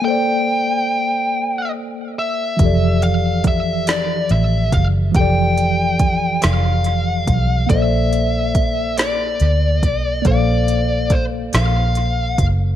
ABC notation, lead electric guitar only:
X:1
M:6/8
L:1/8
Q:3/8=47
K:Bblyd
V:1 name="Lead electric guitar"
g4 z e- | e f e d e f | g3 f3 | e3 d3 |
d2 c f2 z |]